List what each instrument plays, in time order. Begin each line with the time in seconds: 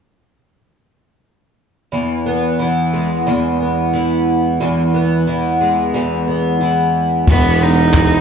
1.92 twelve-string acoustic guitar E2
2.26 twelve-string acoustic guitar B3
2.59 twelve-string acoustic guitar E3
2.93 twelve-string acoustic guitar G#3
3.27 twelve-string acoustic guitar E2
3.60 twelve-string acoustic guitar B3
3.93 twelve-string acoustic guitar E3
4.60 twelve-string acoustic guitar E2
4.94 twelve-string acoustic guitar B3
5.27 twelve-string acoustic guitar E3
5.61 twelve-string acoustic guitar G#3
5.94 twelve-string acoustic guitar E2
6.28 twelve-string acoustic guitar B3
6.61 twelve-string acoustic guitar E3
7.27 tuba E1, twelve-string acoustic guitar E2, cello B3, kick, crash
7.61 twelve-string acoustic guitar G#3, cello D#4, tambourine
7.94 twelve-string acoustic guitar E3, kick, clap